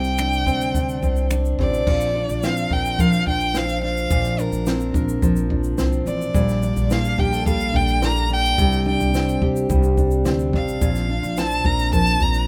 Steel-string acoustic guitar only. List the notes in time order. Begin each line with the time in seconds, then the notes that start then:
Already playing: C3 C4
0.19 D4
0.47 C4
0.75 D4
1.03 C4
1.31 D4
1.59 C4
1.87 A#2
2.15 D4
2.43 C4
2.71 A#4
2.99 F3
3.27 D4
3.55 C4
3.83 D4
4.11 A#2
4.39 D4
4.67 C4
4.95 A#4
5.23 F3
5.51 D4
5.79 C4
6.07 D4
6.35 A#2
6.63 D4
6.91 A#3
7.19 G4
7.33 A4
7.46 G3
7.74 D4
8.02 A#3
8.30 D4
8.58 C3
8.86 D4
9.14 C4
9.42 G4
9.70 G3
9.98 D4
10.26 C4
10.54 D4
10.82 A#2
11.09 D4
11.38 C4
11.65 A#4
11.93 F3
12.21 D4